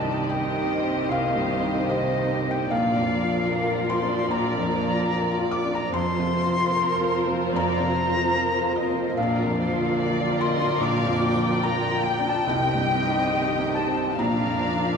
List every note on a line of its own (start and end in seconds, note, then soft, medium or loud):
0.00 1.06 C2 medium
0.00 0.19 G2 soft
0.00 1.09 C3 medium
0.00 2.67 C3 medium
0.00 2.72 D#3 medium
0.00 1.36 G3 soft
0.00 2.71 C4 soft
0.00 0.82 C4 soft
0.00 0.46 D#4 soft
0.00 2.68 G4 medium
0.00 0.29 D5 medium
0.00 2.68 D#5 medium
0.00 0.25 A5 medium
0.00 0.31 A5 medium
0.29 0.74 G4 soft
0.29 1.11 D#5 medium
0.29 1.11 G5 medium
0.29 1.06 G5 medium
0.57 2.16 D#4 soft
0.57 1.00 D#4 soft
0.83 1.26 C4 soft
0.83 1.62 C4 soft
1.09 2.66 C2 soft
1.09 2.75 C3 soft
1.09 2.71 C5 medium
1.09 1.90 F5 medium
1.09 1.87 F5 medium
1.36 1.79 G2 soft
1.36 2.74 G3 soft
1.63 2.42 C4 soft
1.63 2.07 D#4 soft
1.89 2.74 G4 soft
1.89 2.34 G4 soft
1.89 2.47 D#5 medium
1.89 2.53 D#5 medium
2.17 2.74 D#4 soft
2.17 2.60 D#4 soft
2.43 2.74 C4 soft
2.43 2.71 C4 soft
2.51 2.70 G5 medium
2.51 2.73 G5 medium
2.69 4.27 A#1 medium
2.69 5.89 A#2 medium
2.69 4.29 A#2 medium
2.69 5.89 F3 medium
2.69 5.89 F4 medium
2.69 5.89 A#4 medium
2.69 3.49 D5 medium
2.69 5.90 D5 medium
2.69 3.87 F5 medium
2.69 3.93 F5 medium
2.96 3.40 F2 soft
2.96 4.56 F3 soft
3.23 4.02 D4 soft
3.23 3.66 F4 soft
3.49 5.11 A#4 soft
3.49 3.93 A#4 soft
3.49 3.91 A#4 medium
3.76 5.38 F4 soft
3.76 4.21 F4 soft
3.89 4.32 C5 medium
3.89 4.28 C6 medium
3.89 4.34 C6 medium
4.03 4.47 D4 soft
4.03 4.83 D4 soft
4.28 5.88 A#1 soft
4.28 5.96 A#2 soft
4.28 4.70 D5 medium
4.28 5.48 A#5 medium
4.33 5.52 A#5 medium
4.55 5.00 F2 soft
4.55 8.48 F3 soft
4.71 5.91 D5 medium
4.84 5.64 D4 soft
4.84 5.28 F4 soft
5.12 5.55 A#4 soft
5.12 6.72 A#4 medium
5.39 5.83 F4 soft
5.39 6.99 F4 soft
5.51 5.71 D6 medium
5.51 5.75 D6 medium
5.65 5.93 D4 soft
5.65 5.97 D4 soft
5.74 5.93 A#5 medium
5.92 7.50 F2 medium
5.92 9.13 F2 medium
5.92 7.53 F2 medium
5.92 9.14 F3 medium
5.92 9.14 F4 medium
5.92 9.13 A#4 medium
5.92 6.73 C5 medium
5.92 9.13 C5 medium
5.92 7.51 C6 medium
5.92 7.25 C6 medium
6.19 6.63 C3 soft
6.19 7.80 C3 soft
6.46 7.26 C4 soft
6.46 6.89 F4 soft
6.72 7.54 A#4 medium
6.72 7.16 A#4 medium
6.72 8.35 A#4 medium
7.00 8.62 F4 soft
7.00 7.44 F4 soft
7.27 8.07 C4 soft
7.27 7.71 C4 soft
7.53 9.12 F2 soft
7.53 9.20 F2 medium
7.53 7.95 D5 medium
7.53 8.73 A#5 medium
7.80 8.24 C3 soft
7.80 9.20 C3 soft
7.96 9.18 C5 medium
8.07 8.90 C4 medium
8.07 8.51 F4 soft
8.35 8.79 A#4 soft
8.35 9.99 A#4 medium
8.62 9.06 F4 medium
8.62 10.27 F4 soft
8.76 9.14 D#5 medium
8.76 9.19 D#5 medium
8.90 9.17 C4 soft
8.90 9.21 C4 soft
9.15 10.78 A#1 medium
9.15 12.42 A#2 medium
9.15 10.81 A#2 medium
9.15 12.43 F3 medium
9.15 12.43 F4 medium
9.15 12.43 A#4 medium
9.15 9.59 A#4 medium
9.15 12.43 D5 medium
9.15 10.37 F5 medium
9.15 10.42 F5 medium
9.45 9.89 F2 soft
9.45 11.08 F3 soft
9.59 9.99 C5 medium
9.72 12.50 D3 medium
9.72 10.17 F4 medium
9.98 10.44 A#4 soft
9.98 11.63 A#4 medium
9.98 10.40 D5 medium
10.27 10.70 F4 soft
10.27 11.90 F4 soft
10.40 10.81 D#5 medium
10.40 10.79 C6 medium
10.40 10.82 C6 medium
10.55 10.98 D4 soft
10.55 11.35 D4 soft
10.81 12.42 A#1 soft
10.81 12.50 A#2 medium
10.81 11.23 F5 medium
10.81 11.63 D6 medium
10.81 11.60 D6 medium
11.07 11.51 F2 soft
11.07 12.50 F3 soft
11.22 14.19 G5 medium
11.35 11.79 F4 soft
11.62 12.07 A#4 soft
11.62 12.50 A#4 medium
11.62 12.05 A#5 medium
11.62 12.02 A#5 medium
11.91 12.35 F4 soft
11.91 12.50 F4 soft
12.04 12.25 G5 medium
12.19 12.47 D4 soft
12.19 12.50 D4 soft
12.26 12.48 A5 medium
12.26 12.47 A5 medium
12.46 14.15 C2 medium
12.46 14.15 C3 medium
12.46 14.23 C3 medium
12.46 14.15 D#3 medium
12.46 14.15 C4 medium
12.46 14.15 G4 medium
12.46 14.15 D#5 medium
12.46 13.78 G5 medium
12.46 13.72 G5 medium
12.75 13.20 G2 soft
12.75 14.22 G3 soft
13.04 13.88 C4 soft
13.04 13.49 D#4 soft
13.32 14.22 D#5 soft
13.32 13.78 D#5 soft
13.59 14.07 D#4 soft
13.59 14.22 D#4 soft
13.75 14.16 A5 medium
13.75 14.21 A5 medium
13.88 14.18 C4 soft
13.88 14.22 C4 soft
14.18 14.97 A#1 medium
14.18 14.97 A#2 medium
14.18 14.97 F3 medium
14.18 14.97 D4 medium
14.18 14.97 D5 medium
14.18 14.97 F5 medium
14.18 14.97 A#5 medium
14.47 14.94 F2 soft
14.47 14.97 F3 soft
14.77 14.97 A#3 soft
14.77 14.97 F4 soft